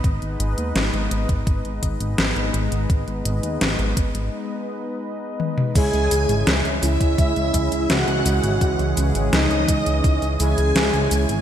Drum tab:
CC |----------------|----------------|x---------------|----------------|
HH |xxxxxxxxxxxxxxxx|xxxxxxxx--------|xxxxxxxxxxxxxxxx|xxxxxxxxxxxxxxxx|
SH |----------------|----------------|xxxxxxxxxxxxxxxx|xxxxxxxxxxxxxxxx|
SD |----o-------o---|----o-----------|----o-------o---|----o-------o---|
T1 |----------------|--------------o-|----------------|----------------|
T2 |----------------|---------------o|----------------|----------------|
BD |o------oo-o-----|o-----o---------|o------oo-o-----|o-----o-o-------|